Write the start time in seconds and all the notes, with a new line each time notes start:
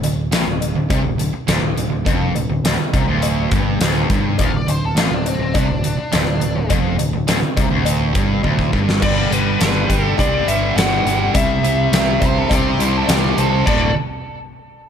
0.03 D1 D2, closed hi-hat, cowbell
0.31 A1 A2, snare, closed hi-hat, tambourine, cowbell
0.47 D1 D2
0.61 closed hi-hat, cowbell
0.75 D1 D2
0.90 C2 C3, kick, closed hi-hat, cowbell
1.04 D1 D2
1.18 D1 D2, closed hi-hat
1.33 muted distorted electric guitar stroke, muted picked electric bass stroke
1.47 D1 D2, snare, closed hi-hat, tambourine, cowbell
1.61 D1 D2
1.76 D1 D2, closed hi-hat
1.90 D1 D2
2.05 F1 F2, kick, closed hi-hat, cowbell
2.35 D1 D2, closed hi-hat, cowbell
2.49 D1 D2
2.64 D1 D2, snare, closed hi-hat, tambourine, cowbell
2.79 muted distorted electric guitar stroke
2.93 C2 C3, kick, closed hi-hat, cowbell
3.07 D1 D2
3.22 closed hi-hat, cowbell
3.51 G1 G2, kick, closed hi-hat
3.80 D1 D2, snare, closed hi-hat, tambourine, cowbell
4.10 G1 G2, kick, closed hi-hat
4.38 D1 D2 F5, kick, closed hi-hat, cowbell
4.52 D1 D2
4.56 D5
4.67 D1 D2 C5, closed hi-hat, cowbell
4.85 A4
4.95 A1 A2, snare, closed hi-hat, tambourine, cowbell
5.00 F4
5.09 D1 D2
5.14 D4
5.26 C4, closed hi-hat, cowbell
5.39 D1 D2
5.54 C2 C3 D4, kick, closed hi-hat, cowbell
5.69 D1 D2
5.83 D1 D2, closed hi-hat
5.97 muted distorted electric guitar stroke
6.12 D1 D2, snare, closed hi-hat, tambourine, cowbell
6.26 D1 D2
6.40 D1 D2, closed hi-hat
6.55 D1 D2
6.70 F1 F2, kick, closed hi-hat, cowbell
6.98 D1 D2, closed hi-hat, cowbell
7.13 D1 D2
7.27 D1 D2, snare, closed hi-hat, tambourine, cowbell
7.42 muted distorted electric guitar stroke, muted picked electric bass stroke
7.56 C2 C3, kick, closed hi-hat, cowbell
7.71 D1 D2
7.85 closed hi-hat, cowbell
8.14 G1 G2, kick, closed hi-hat
8.43 D1 D2, kick, cowbell
8.59 kick
8.72 G1 G2, kick
8.89 snare
9.02 G1 G2 D3 G3 D5, kick, crash, cowbell
9.30 G1 G3 B4, closed hi-hat
9.59 G1 D4 B4, snare, closed hi-hat, tambourine
9.89 G1 G4, kick, closed hi-hat, cowbell
10.03 A4
10.18 C2 G2 D3 G3 D4 D5, kick, closed hi-hat, cowbell
10.47 G1 B3 E5, closed hi-hat, cowbell
10.76 G1 D4 F#5, snare, closed hi-hat, tambourine, cowbell
11.05 G1 G4, closed hi-hat
11.34 C2 C3 G3 C4 E5, kick, closed hi-hat, cowbell
11.63 C2 C4, closed hi-hat
11.92 C2 G4, snare, closed hi-hat, tambourine
12.20 C2 C5, kick, closed hi-hat, cowbell
12.38 A4
12.49 C2 C3 G3 C4 G4, kick, closed hi-hat, cowbell
12.54 D5
12.69 C5
12.78 C2 E4, closed hi-hat, cowbell
12.83 C5
12.97 A4
13.08 C2 G4 D5, snare, closed hi-hat, tambourine, cowbell
13.38 C2 A4 C5, closed hi-hat
13.66 D1 D2 A2 D3 A4 D5, kick, crash, cowbell